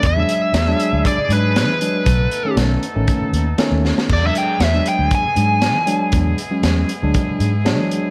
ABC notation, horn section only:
X:1
M:4/4
L:1/8
Q:"Swing 16ths" 1/4=118
K:Emix
V:1 name="Horn section"
[G,DEG]8 | [A,B,^DA]8 | [G,B,EG]8- | [G,B,EG]8 |]